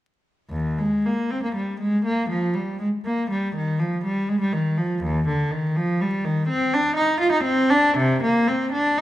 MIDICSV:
0, 0, Header, 1, 2, 480
1, 0, Start_track
1, 0, Key_signature, -3, "major"
1, 0, Tempo, 565504
1, 430, Time_signature, 3, 2, 24, 8
1, 891, Tempo, 500000
1, 3291, Tempo, 488202
1, 7131, Tempo, 508906
1, 8597, End_track
2, 0, Start_track
2, 0, Title_t, "Cello"
2, 0, Program_c, 0, 42
2, 427, Note_on_c, 0, 39, 77
2, 663, Note_off_c, 0, 39, 0
2, 664, Note_on_c, 0, 56, 71
2, 889, Note_off_c, 0, 56, 0
2, 901, Note_on_c, 0, 58, 72
2, 1136, Note_on_c, 0, 60, 74
2, 1138, Note_off_c, 0, 58, 0
2, 1254, Note_off_c, 0, 60, 0
2, 1257, Note_on_c, 0, 58, 67
2, 1371, Note_off_c, 0, 58, 0
2, 1377, Note_on_c, 0, 55, 64
2, 1607, Note_off_c, 0, 55, 0
2, 1617, Note_on_c, 0, 56, 76
2, 1849, Note_off_c, 0, 56, 0
2, 1852, Note_on_c, 0, 58, 81
2, 2089, Note_off_c, 0, 58, 0
2, 2089, Note_on_c, 0, 53, 76
2, 2324, Note_on_c, 0, 55, 65
2, 2329, Note_off_c, 0, 53, 0
2, 2568, Note_on_c, 0, 56, 68
2, 2571, Note_off_c, 0, 55, 0
2, 2645, Note_off_c, 0, 56, 0
2, 2816, Note_on_c, 0, 58, 74
2, 3049, Note_off_c, 0, 58, 0
2, 3057, Note_on_c, 0, 55, 74
2, 3287, Note_off_c, 0, 55, 0
2, 3294, Note_on_c, 0, 51, 76
2, 3528, Note_off_c, 0, 51, 0
2, 3532, Note_on_c, 0, 53, 77
2, 3771, Note_off_c, 0, 53, 0
2, 3777, Note_on_c, 0, 55, 70
2, 4006, Note_off_c, 0, 55, 0
2, 4015, Note_on_c, 0, 56, 73
2, 4128, Note_on_c, 0, 55, 74
2, 4130, Note_off_c, 0, 56, 0
2, 4245, Note_off_c, 0, 55, 0
2, 4250, Note_on_c, 0, 51, 74
2, 4494, Note_off_c, 0, 51, 0
2, 4494, Note_on_c, 0, 53, 80
2, 4739, Note_off_c, 0, 53, 0
2, 4744, Note_on_c, 0, 39, 92
2, 4978, Note_off_c, 0, 39, 0
2, 4984, Note_on_c, 0, 50, 77
2, 5216, Note_off_c, 0, 50, 0
2, 5221, Note_on_c, 0, 51, 73
2, 5458, Note_off_c, 0, 51, 0
2, 5469, Note_on_c, 0, 53, 86
2, 5703, Note_off_c, 0, 53, 0
2, 5707, Note_on_c, 0, 55, 80
2, 5944, Note_off_c, 0, 55, 0
2, 5945, Note_on_c, 0, 51, 90
2, 6181, Note_on_c, 0, 60, 94
2, 6182, Note_off_c, 0, 51, 0
2, 6413, Note_off_c, 0, 60, 0
2, 6421, Note_on_c, 0, 62, 100
2, 6645, Note_on_c, 0, 63, 97
2, 6656, Note_off_c, 0, 62, 0
2, 6881, Note_on_c, 0, 65, 92
2, 6882, Note_off_c, 0, 63, 0
2, 6998, Note_on_c, 0, 63, 90
2, 7003, Note_off_c, 0, 65, 0
2, 7113, Note_on_c, 0, 60, 93
2, 7121, Note_off_c, 0, 63, 0
2, 7353, Note_off_c, 0, 60, 0
2, 7363, Note_on_c, 0, 62, 98
2, 7616, Note_off_c, 0, 62, 0
2, 7621, Note_on_c, 0, 48, 106
2, 7864, Note_off_c, 0, 48, 0
2, 7864, Note_on_c, 0, 58, 94
2, 8097, Note_off_c, 0, 58, 0
2, 8098, Note_on_c, 0, 60, 83
2, 8329, Note_on_c, 0, 62, 94
2, 8335, Note_off_c, 0, 60, 0
2, 8562, Note_off_c, 0, 62, 0
2, 8566, Note_on_c, 0, 63, 98
2, 8597, Note_off_c, 0, 63, 0
2, 8597, End_track
0, 0, End_of_file